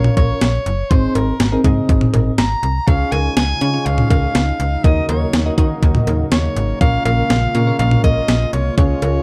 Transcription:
Already playing: synth keys C#4 F4 A#4 C#5, soprano saxophone C#5
0.04 mid tom
0.17 fm bass A#1, soprano saxophone C#5, kick, closed hi-hat, cowbell
0.41 fm bass A#1, snare, closed hi-hat
0.66 fm bass F#1, closed hi-hat
0.91 fm bass G#1, synth keys C4 D#4 G#4 C5, soprano saxophone C5, kick, closed hi-hat
1.15 fm bass G#1, soprano saxophone A#4, closed hi-hat, cowbell
1.40 fm bass G#1, snare, closed hi-hat
1.52 synth keys C4 D#4 G#4 A#4
1.64 fm bass G#2, synth keys C4 D#4 G#4 D#5, kick, closed hi-hat, mid tom
1.89 fm bass G#1, kick, closed hi-hat
2.01 mid tom
2.14 fm bass G#1, closed hi-hat, mid tom, cowbell
2.38 fm bass G#1, soprano saxophone A#5, snare, closed hi-hat
2.63 fm bass C2, closed hi-hat
2.87 fm bass C#2, analog synth pad C#3 F3 G#3 D#4, synth keys C#4 F4 G#4 C#5, soprano saxophone F5, kick, closed hi-hat
3.12 fm bass C#2, soprano saxophone G#5, closed hi-hat, cowbell
3.37 fm bass C#2, soprano saxophone G#5, snare, closed hi-hat
3.61 fm bass C#3, synth keys C#4 F4 G#4 C#5, closed hi-hat
3.74 synth keys C#4 F4 G#4 C#5
3.86 fm bass C#2, soprano saxophone F5, closed hi-hat
3.98 mid tom
4.10 fm bass C#2, soprano saxophone F5, kick, closed hi-hat, cowbell
4.35 fm bass C#2, snare, closed hi-hat
4.60 fm bass C#2, closed hi-hat
4.84 fm bass D#2, analog synth pad C#3 F#3 A#3, synth keys D#4 F#4 A#4 D#5, soprano saxophone D#5, kick, closed hi-hat
5.09 fm bass D#2, soprano saxophone C#5, closed hi-hat, cowbell
5.33 fm bass D#2, snare, closed hi-hat
5.46 synth keys D#4 F#4 A#4 D#5
5.58 fm bass D#3, synth keys D#4 F#4 A#4 D#5, kick, closed hi-hat
5.83 fm bass D#2, kick, closed hi-hat
5.95 mid tom
6.07 fm bass D#2, closed hi-hat, cowbell
6.32 fm bass D#2, soprano saxophone C#5, snare, closed hi-hat
6.56 fm bass G#1, closed hi-hat
6.81 fm bass A#1, analog synth pad G#3 F4, synth keys C#4 F4 A#4 C#5, soprano saxophone F5, kick, closed hi-hat
7.06 fm bass A#1, soprano saxophone F5, closed hi-hat, cowbell
7.30 fm bass A#1, snare, closed hi-hat
7.55 fm bass A#2, synth keys C#4 F4 A#4 C#5, closed hi-hat
7.67 synth keys C#4 F4 A#4 C#5
7.79 fm bass A#1, soprano saxophone F5, closed hi-hat
7.91 mid tom
8.04 fm bass A#1, soprano saxophone D#5, kick, closed hi-hat, cowbell
8.28 fm bass A#1, snare, closed hi-hat
8.53 fm bass C2, soprano saxophone C#5, closed hi-hat
8.78 fm bass C#2, analog synth pad F3 G#3, synth keys C#4 F4 G#4 C#5, soprano saxophone C#5, kick, closed hi-hat
9.02 fm bass C#2, closed hi-hat, cowbell

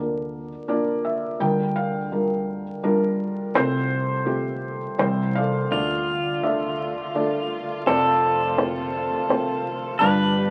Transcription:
Already playing: upright bass D2, felt piano D2 D3 A#3 D4 F4 D5
0.00 felt piano A#4
0.68 felt piano A#3 D4 F4 D5
1.05 felt piano E5
1.40 felt piano D2 D3 G3 D4 F4 A#4 G5, upright bass D2
1.76 felt piano A#4 F5
2.12 felt piano G3 D4 F4 A#4
2.83 felt piano G3 D4 F4 A#4
3.55 upright bass C2, felt piano C2 C3 A3 C4 F4 C5
4.25 felt piano A3 C4 F4 G4
4.98 felt piano C2 C3 E3 G3 C4 C5, upright bass C2
5.35 felt piano A4 D5 F5
5.71 felt piano D2 D3 A3 D4 F4 D5, upright bass D2, string section D3 A3 F4, pedal steel guitar F4
6.43 felt piano A3 D4 F4 A4 D5 E5
7.14 felt piano A3 D4 F4 A4 D5
7.86 felt piano F1 F2 A3 C4 F4 A4 C5 D5, upright bass F2, string section C3 A3, pedal steel guitar A4
8.57 felt piano A3 C4 F4 C5
8.62 felt piano F4 A4
9.29 felt piano A3 C4 F4 C5
9.99 felt piano G1 G2 G3 D4 F4 B4 D5 F5 A5, upright bass G2, string section F3 B3 G4, pedal steel guitar B4

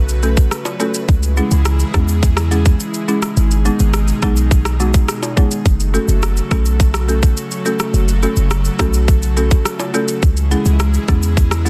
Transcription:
Already playing: 808-style bass B1, analog synth pad C#3 F#3 A3 F#4 B4
0.08 shaker
0.23 marimba A3 C#4 F#4 A4, shaker
0.37 kick, shaker
0.51 cross-stick, shaker
0.65 high timbale, shaker
0.80 marimba A3 C#4 F#4 A4, high timbale, shaker
0.94 shaker
1.08 808-style bass C#2, analog synth pad C#3 E3 G#3 E4 G#4, kick, shaker
1.23 shaker
1.37 marimba G#3 C#4 E4 G#4, shaker
1.51 808-style bass C#2, shaker
1.65 cross-stick, shaker
1.79 shaker
1.94 808-style bass E2, marimba G#3 C#4 E4 G#4, kick, cross-stick, shaker
2.08 shaker
2.23 kick, shaker
2.37 cross-stick, shaker
2.51 marimba G#3 C#4 E4 G#4, shaker
2.65 kick, shaker
2.80 shaker
2.94 shaker
3.08 marimba G#3 C#4 E4 G#4, shaker
3.22 cross-stick, shaker
3.37 808-style bass G#1, analog synth pad B2 D#3 D#4 G#4, shaker
3.51 shaker
3.65 marimba G#3 B3 D#4 G#4, shaker
3.79 808-style bass G#1, shaker
3.94 cross-stick, shaker
4.08 shaker
4.22 808-style bass B1, marimba G#3 B3 D#4 G#4, kick, cross-stick, shaker
4.36 shaker
4.51 kick, shaker
4.65 cross-stick, shaker
4.80 marimba G#3 B3 D#4 F#4, shaker
4.94 kick, shaker
5.08 cross-stick, shaker
5.23 high timbale, shaker
5.37 marimba G#3 B3 D#4 G#4, kick, high timbale, shaker
5.51 shaker
5.66 808-style bass F#1, analog synth pad C#3 F#3 A3 F#4 A4, kick, shaker
5.80 shaker
5.94 marimba A3 C#4 F#4 A4, shaker
6.08 808-style bass F#1, shaker
6.22 cross-stick, shaker
6.36 shaker
6.51 808-style bass B1, marimba A3 C#4 F#4 A4, kick, cross-stick, shaker
6.65 shaker
6.80 kick, shaker
6.94 cross-stick, shaker
7.08 marimba A3 C#4 F#4 A4, shaker
7.22 kick, shaker
7.37 shaker
7.51 shaker
7.65 marimba A3 C#4 F#4 A4, shaker
7.79 cross-stick, shaker
7.94 808-style bass F#1, shaker
8.08 shaker
8.23 marimba A3 C#4 F#4 A4, shaker
8.36 808-style bass F#1, shaker
8.51 cross-stick, shaker
8.65 shaker
8.79 808-style bass B1, marimba A3 C#4 F#4 A4, kick, cross-stick, shaker
8.93 shaker
9.08 kick, shaker
9.22 shaker
9.37 marimba A3 C#4 F#4 A4, shaker
9.51 kick, shaker
9.65 cross-stick, shaker
9.80 high timbale, shaker
9.94 marimba A3 C#4 F#4 A4, high timbale, shaker
10.08 shaker
10.23 808-style bass C#2, analog synth pad E3 G#3 E4 G#4, kick, shaker
10.37 shaker
10.51 marimba G#3 C#4 E4 G#4, shaker
10.65 808-style bass C#2, shaker
10.80 cross-stick, shaker
10.94 shaker
11.08 808-style bass E2, marimba G#3 C#4 E4 G#4, kick, cross-stick, shaker
11.22 shaker
11.37 kick, shaker
11.51 cross-stick, shaker
11.65 marimba G#3 C#4 E4 G#4, shaker

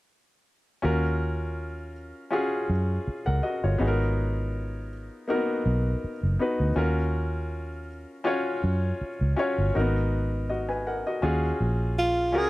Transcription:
0.82 fingered electric bass D#2, grand piano C#4 F4 F#4 A#4
2.31 grand piano C#4 F4 F#4 G#4
2.70 fingered electric bass F#2
3.08 muted fingered electric bass stroke
3.26 fingered electric bass C#2, grand piano A#4 F#5
3.43 grand piano F#4 D#5
3.64 fingered electric bass G1, grand piano F4 C#5
3.78 fingered electric bass G#1, grand piano B3 D#4 F#4 G#4
3.88 grand piano A#4
5.28 grand piano A#3 D#4 F#4 A#4
5.34 grand piano B3
5.66 fingered electric bass B1
6.04 muted fingered electric bass stroke
6.23 fingered electric bass F#1
6.39 grand piano B3 D#4 F#4 B4
6.60 fingered electric bass D2
6.76 fingered electric bass D#2, grand piano C#4 F4 F#4 A#4
8.24 grand piano C#4 F4 F#4 C#5
8.64 fingered electric bass F#2
9.01 muted fingered electric bass stroke
9.21 fingered electric bass C#2
9.36 grand piano C#4 F4 F#4 C#5
9.58 fingered electric bass G1
9.74 fingered electric bass G#1, grand piano A#3 D#4 F#4 A#4
9.80 grand piano B3
10.49 grand piano F#4 D#5
10.69 grand piano B4 G#5
10.87 grand piano A#4 F#5
11.07 grand piano F#4 D#5
11.22 fingered electric bass D#2, grand piano C#4 F4 F#4 G#4
11.61 fingered electric bass A#1
11.99 tenor saxophone F4
12.32 fingered electric bass C#2, grand piano C#4 F4 F#4 A#4
12.37 tenor saxophone G#4

